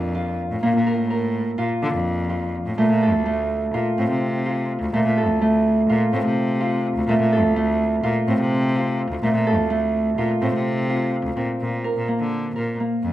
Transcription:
0.00 0.42 F2 medium
0.00 0.62 A#3 medium
0.00 1.82 D4 medium
0.00 0.14 F4 medium
0.00 0.86 A#4 medium
0.15 1.57 F4 medium
0.51 0.62 A2 medium
0.63 0.74 A#2 medium
0.63 2.84 A#3 medium
0.75 1.00 A#2 medium
0.87 1.10 A#4 medium
0.99 1.51 A2 medium
1.10 2.84 A#4 medium
1.58 1.69 A#2 medium
1.58 2.29 F4 medium
1.82 1.93 D3 medium
1.82 4.62 D4 medium
1.94 2.56 F2 medium
2.30 3.73 F4 medium
2.66 2.77 A2 medium
2.78 2.89 A#2 medium
2.78 3.25 A3 medium
2.90 3.15 A#2 medium
3.02 5.17 A4 medium
3.14 3.66 D2 medium
3.26 4.93 A3 medium
3.74 3.84 A#2 medium
3.74 4.45 F4 medium
3.98 4.09 A2 medium
3.98 6.12 C4 medium
4.10 4.72 C3 medium
4.46 5.89 F4 medium
4.82 4.92 D2 medium
4.93 5.04 A#2 medium
4.93 5.41 A3 medium
5.06 5.31 A#2 medium
5.17 7.32 A4 medium
5.30 5.81 D2 medium
5.41 7.08 A3 medium
5.89 6.00 A#2 medium
5.89 6.60 F4 medium
6.13 6.23 A2 medium
6.13 8.27 C4 medium
6.25 6.87 C3 medium
6.60 8.03 F4 medium
6.96 7.07 D2 medium
7.07 7.18 A#2 medium
7.07 7.56 A3 medium
7.20 7.45 A#2 medium
7.33 9.46 A4 medium
7.44 7.95 D2 medium
7.56 9.23 A3 medium
8.03 8.14 A#2 medium
8.03 8.75 F4 medium
8.27 8.38 A2 medium
8.27 10.41 C4 medium
8.40 9.01 C3 medium
8.76 10.17 F4 medium
9.11 9.21 D2 medium
9.22 9.33 A#2 medium
9.22 9.70 A3 medium
9.34 9.60 A#2 medium
9.47 11.66 A4 medium
9.58 10.10 D2 medium
9.70 11.90 A3 medium
10.17 10.28 A#2 medium
10.17 10.89 F4 medium
10.41 10.52 A2 medium
10.41 11.36 C4 medium
10.54 11.15 C3 medium
10.89 13.13 F4 medium
11.25 11.35 D2 medium
11.36 11.47 A#2 medium
11.36 13.13 C4 medium
11.61 11.91 A#2 medium
11.84 12.55 A#4 medium
11.97 12.07 A#2 medium
12.08 12.80 A#3 medium
12.19 12.51 D3 medium
12.55 12.76 A#2 medium
12.55 13.13 A#4 medium
12.80 13.13 A#3 medium
13.03 13.13 F2 medium

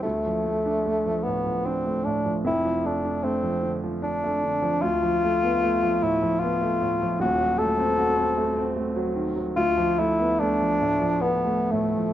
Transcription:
0.03 2.43 D2 medium
0.03 1.25 A3 medium
0.26 0.57 F3 soft
0.44 0.77 A3 soft
0.66 0.97 D4 soft
0.86 1.17 A3 soft
1.06 1.38 F3 soft
1.23 1.58 A2 soft
1.23 1.67 B3 medium
1.46 1.78 F3 soft
1.65 2.06 C4 medium
1.65 1.98 D4 soft
1.86 2.18 A3 soft
2.04 2.38 A2 soft
2.04 2.34 D4 medium
2.25 2.46 F3 soft
2.44 4.78 F1 soft
2.44 4.79 F2 medium
2.44 2.88 E4 medium
2.65 2.98 F3 soft
2.85 3.17 A3 soft
2.85 3.24 D4 medium
3.05 3.37 D4 soft
3.23 3.56 A3 medium
3.23 3.76 C4 medium
3.43 3.75 F3 soft
3.63 3.95 D3 soft
3.83 4.15 F3 medium
4.02 4.35 D4 soft
4.02 4.83 D4 medium
4.24 4.55 A3 soft
4.44 4.75 D3 soft
4.62 4.83 F3 soft
4.82 7.16 D2 medium
4.82 6.05 F4 loud
5.03 5.35 F3 soft
5.23 5.55 A3 medium
5.43 5.75 B3 medium
5.63 5.94 A3 medium
5.83 6.14 F3 soft
6.02 6.34 A2 soft
6.02 6.41 E4 medium
6.22 6.54 F3 medium
6.40 6.74 B3 medium
6.40 7.20 F4 medium
6.62 6.93 A3 medium
6.81 7.13 A2 soft
7.02 7.21 F3 medium
7.19 9.52 D#1 medium
7.19 9.53 D#2 medium
7.19 7.60 F#4 medium
7.40 7.71 F#3 medium
7.58 7.90 A3 medium
7.58 8.76 A4 loud
7.78 8.09 C4 medium
7.98 8.29 F#4 medium
8.18 8.49 C4 medium
8.37 8.69 A3 medium
8.57 8.88 C4 medium
8.76 9.08 A3 medium
8.96 9.28 F#3 medium
9.15 9.48 D#3 medium
9.36 9.57 F#3 medium
9.56 12.13 D2 medium
9.56 10.01 F4 loud
9.78 10.11 F3 medium
9.99 10.32 A3 medium
9.99 10.41 E4 medium
10.19 10.52 B3 medium
10.39 10.73 A3 medium
10.39 11.22 D4 loud
10.61 10.93 F3 soft
10.81 11.15 A2 soft
11.01 11.36 F3 medium
11.21 11.73 B3 medium
11.21 11.60 B3 soft
11.45 11.84 A3 medium
11.71 12.10 A2 soft
11.71 12.13 A3 medium
11.96 12.13 F3 soft

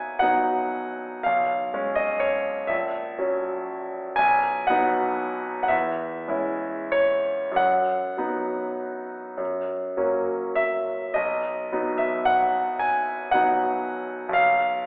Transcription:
0.00 1.26 B1 soft
0.00 0.17 F#3 soft
0.00 0.17 B3 soft
0.00 0.18 D#4 soft
0.00 1.28 D#5 soft
0.00 1.27 E5 medium
0.00 0.19 F#5 medium
0.00 0.20 G#5 medium
0.19 1.21 F#3 soft
0.19 1.22 B3 soft
0.19 1.22 D#4 soft
0.19 1.24 F#5 medium
1.23 1.73 B1 soft
1.23 1.98 F5 medium
1.74 2.67 G#3 soft
1.74 2.67 C#4 soft
1.95 2.21 D#5 medium
2.20 2.70 C#5 medium
2.67 3.18 A#1 soft
2.67 3.68 E5 medium
3.19 4.15 F#3 soft
3.19 4.15 C#4 soft
4.16 4.68 B1 soft
4.16 4.68 G#5 medium
4.67 5.67 F#3 soft
4.67 5.67 B3 soft
4.67 5.68 D#4 soft
4.67 5.61 F#5 medium
5.63 5.71 F#5 medium
5.68 6.27 E2 soft
5.68 6.93 E5 medium
6.28 7.54 G#3 soft
6.28 7.55 C#4 soft
6.28 7.55 E4 soft
6.92 7.58 C#5 medium
7.52 8.14 F#2 soft
7.56 10.57 F#5 medium
8.17 9.34 F#3 soft
8.17 9.34 B3 soft
8.17 9.34 D#4 soft
9.38 9.96 F#2 soft
9.97 11.12 F#3 soft
9.97 11.12 A#3 soft
9.97 11.12 C#4 soft
10.55 11.15 E5 medium
11.14 11.71 B1 soft
11.14 12.00 D#5 medium
11.72 13.30 F#3 soft
11.72 13.30 B3 soft
11.72 13.30 D#4 soft
11.98 12.27 E5 medium
12.25 12.81 F#5 medium
12.79 13.33 G#5 medium
13.31 14.31 F#3 soft
13.31 14.31 B3 soft
13.31 14.31 D#4 soft
13.31 14.34 F#5 medium
14.29 14.82 B1 soft
14.33 14.86 F5 medium

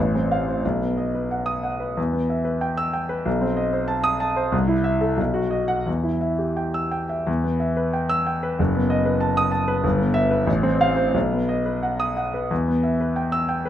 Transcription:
0.00 0.62 A1 medium
0.15 0.41 C4 medium
0.32 0.57 F5 medium
0.48 0.64 C5 soft
0.65 1.94 B1 medium
0.81 1.07 B3 soft
0.97 1.23 D#5 soft
1.15 1.40 B4 soft
1.31 1.57 F#5 soft
1.46 1.73 D#6 medium
1.63 1.90 F#5 soft
1.80 1.97 B4 soft
1.97 3.22 E2 medium
2.12 2.39 B3 soft
2.30 2.56 E5 medium
2.45 2.71 B4 medium
2.61 2.87 G5 medium
2.77 3.03 E6 medium
2.93 3.19 G5 medium
3.09 3.25 B4 medium
3.25 4.49 B1 medium
3.41 3.67 C4 medium
3.57 3.83 D#5 medium
3.73 3.99 C5 medium
3.88 4.14 A5 medium
4.04 4.30 D#6 medium
4.20 4.46 A5 medium
4.36 4.53 C5 medium
4.52 5.16 C2 medium
4.68 4.95 E4 medium
4.84 5.11 E5 medium
5.01 5.18 A4 medium
5.17 5.84 B1 medium
5.34 5.62 F#4 medium
5.51 5.79 D#5 medium
5.68 5.86 F#5 medium
5.86 7.23 E2 medium
6.03 6.32 E4 soft
6.21 6.50 E5 soft
6.39 6.67 G4 soft
6.57 6.85 G5 soft
6.74 7.03 E6 medium
6.91 7.20 G5 soft
7.09 7.27 E5 soft
7.27 8.54 E2 medium
7.44 7.71 B3 medium
7.60 7.87 E5 medium
7.77 8.04 B4 medium
7.93 8.20 G5 medium
8.09 8.36 E6 medium
8.27 8.52 G5 medium
8.43 8.59 B4 medium
8.59 9.80 F#1 medium
8.75 9.00 B3 medium
8.90 9.15 D#5 medium
9.06 9.31 B4 medium
9.21 9.46 A5 medium
9.37 9.62 D#6 medium
9.52 9.77 A5 medium
9.68 9.84 B4 medium
9.84 10.46 G1 medium
9.98 10.24 B3 medium
10.14 10.40 E5 medium
10.31 10.47 B4 medium
10.47 11.12 A1 medium
10.63 10.90 C4 medium
10.81 11.08 F5 medium
10.96 11.14 C5 medium
11.14 12.46 B1 medium
11.31 11.59 B3 medium
11.49 11.76 D#5 medium
11.66 11.93 B4 medium
11.83 12.10 F#5 medium
12.00 12.27 D#6 medium
12.17 12.44 F#5 medium
12.34 12.50 B4 medium
12.51 13.69 E2 medium
12.68 12.94 B3 soft
12.83 13.10 E5 medium
13.01 13.26 B4 medium
13.16 13.42 G5 medium
13.32 13.58 E6 medium
13.49 13.69 G5 medium
13.65 13.69 B4 medium

